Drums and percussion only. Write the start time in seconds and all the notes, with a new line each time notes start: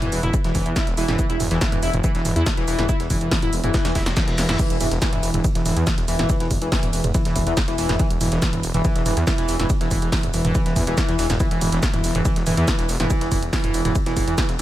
0.02 closed hi-hat, mid tom
0.12 open hi-hat, shaker
0.23 closed hi-hat, mid tom
0.34 kick, closed hi-hat, shaker
0.44 snare, closed hi-hat
0.55 kick, mid tom, open hi-hat, shaker
0.66 closed hi-hat
0.76 kick, snare, closed hi-hat, shaker
0.87 snare, closed hi-hat
0.97 snare, open hi-hat, shaker
1.08 snare, closed hi-hat, mid tom
1.19 kick, closed hi-hat, shaker
1.30 closed hi-hat
1.40 mid tom, open hi-hat, shaker
1.51 snare, closed hi-hat
1.61 kick, snare, closed hi-hat, shaker
1.72 closed hi-hat, mid tom
1.83 open hi-hat, shaker
1.93 closed hi-hat, mid tom
2.04 kick, closed hi-hat, shaker
2.15 snare, closed hi-hat
2.25 mid tom, open hi-hat, shaker
2.36 closed hi-hat
2.46 kick, snare, closed hi-hat, shaker
2.57 snare, closed hi-hat
2.68 snare, open hi-hat, shaker
2.79 snare, closed hi-hat, mid tom
2.89 kick, closed hi-hat, shaker
3.00 snare, closed hi-hat
3.10 kick, mid tom, open hi-hat, shaker
3.21 closed hi-hat
3.31 kick, snare, closed hi-hat, open hi-hat
3.42 closed hi-hat, mid tom
3.53 open hi-hat, shaker
3.64 closed hi-hat, mid tom
3.74 kick, snare, closed hi-hat, shaker
3.85 snare, closed hi-hat, shaker
3.95 kick, snare, mid tom, open hi-hat, shaker
4.06 snare, closed hi-hat, shaker
4.17 kick, snare, closed hi-hat, shaker
4.28 snare, closed hi-hat
4.38 snare, open hi-hat, shaker
4.49 snare, closed hi-hat, mid tom
4.59 kick, closed hi-hat, crash, ride, shaker
4.70 closed hi-hat, ride
4.81 mid tom, open hi-hat, ride, shaker
4.91 snare, closed hi-hat, ride
5.02 kick, snare, closed hi-hat, ride, shaker
5.13 closed hi-hat, mid tom, ride
5.23 open hi-hat, ride, shaker
5.34 closed hi-hat, mid tom, ride
5.44 kick, closed hi-hat, ride, shaker
5.55 snare, closed hi-hat, ride
5.66 mid tom, open hi-hat, ride, shaker
5.77 closed hi-hat, ride
5.87 kick, snare, closed hi-hat, ride, shaker
5.98 snare, closed hi-hat, ride
6.08 snare, open hi-hat, ride, shaker
6.19 snare, closed hi-hat, mid tom, ride
6.29 kick, closed hi-hat, ride, shaker
6.40 snare, closed hi-hat, ride
6.51 kick, mid tom, open hi-hat, ride, shaker
6.62 closed hi-hat, ride
6.72 kick, snare, closed hi-hat, open hi-hat, ride
6.83 closed hi-hat, mid tom, ride
6.93 open hi-hat, ride, shaker
7.04 closed hi-hat, mid tom, ride
7.14 kick, closed hi-hat, ride, shaker
7.25 snare, closed hi-hat, ride
7.36 kick, mid tom, open hi-hat, ride, shaker
7.47 closed hi-hat, ride
7.57 kick, snare, closed hi-hat, ride, shaker
7.68 snare, closed hi-hat, ride
7.78 snare, open hi-hat, ride, shaker
7.89 snare, closed hi-hat, mid tom, ride
8.00 kick, closed hi-hat, ride, shaker
8.10 closed hi-hat, ride
8.21 mid tom, open hi-hat, ride, shaker
8.32 snare, closed hi-hat, ride
8.42 kick, snare, closed hi-hat, ride, shaker
8.53 closed hi-hat, mid tom, ride
8.63 open hi-hat, ride, shaker
8.74 closed hi-hat, mid tom, ride
8.85 kick, closed hi-hat, ride, shaker
8.96 snare, closed hi-hat, ride
9.06 mid tom, open hi-hat, ride, shaker
9.17 closed hi-hat, ride
9.27 kick, snare, closed hi-hat, ride, shaker
9.38 snare, closed hi-hat, ride
9.48 snare, open hi-hat, ride, shaker
9.60 snare, closed hi-hat, mid tom, ride
9.70 kick, closed hi-hat, ride, shaker
9.81 snare, closed hi-hat, ride
9.91 kick, mid tom, open hi-hat, ride, shaker
10.02 closed hi-hat, ride
10.12 kick, snare, closed hi-hat, open hi-hat, ride
10.23 closed hi-hat, mid tom, ride
10.34 open hi-hat, ride, shaker
10.45 closed hi-hat, mid tom, ride
10.55 kick, closed hi-hat, ride, shaker
10.66 snare, closed hi-hat, ride
10.76 kick, mid tom, open hi-hat, ride, shaker
10.87 closed hi-hat, ride
10.97 kick, snare, closed hi-hat, ride, shaker
11.08 snare, closed hi-hat, ride
11.19 snare, open hi-hat, ride, shaker
11.30 snare, closed hi-hat, mid tom, ride, shaker
11.40 kick, closed hi-hat, ride, shaker
11.51 closed hi-hat, ride
11.61 mid tom, open hi-hat, ride, shaker
11.72 snare, closed hi-hat, ride
11.83 kick, snare, closed hi-hat, ride, shaker
11.94 closed hi-hat, mid tom, ride
12.04 open hi-hat, ride, shaker
12.15 closed hi-hat, mid tom, ride
12.25 kick, closed hi-hat, ride, shaker
12.36 snare, closed hi-hat, ride
12.46 mid tom, open hi-hat, ride, shaker
12.57 closed hi-hat, ride
12.68 kick, snare, closed hi-hat, ride, shaker
12.79 snare, closed hi-hat, ride
12.89 snare, open hi-hat, ride, shaker
13.00 snare, closed hi-hat, mid tom, ride
13.10 kick, closed hi-hat, ride, shaker
13.21 snare, closed hi-hat, ride
13.31 kick, mid tom, open hi-hat, ride, shaker
13.43 closed hi-hat, ride
13.53 kick, snare, closed hi-hat, open hi-hat, ride
13.64 closed hi-hat, mid tom, ride
13.74 open hi-hat, ride, shaker
13.85 closed hi-hat, mid tom, ride
13.95 kick, closed hi-hat, ride, shaker
14.06 snare, closed hi-hat, ride
14.17 kick, mid tom, open hi-hat, ride, shaker
14.28 closed hi-hat, ride
14.38 kick, snare, closed hi-hat, ride, shaker
14.49 snare, closed hi-hat, ride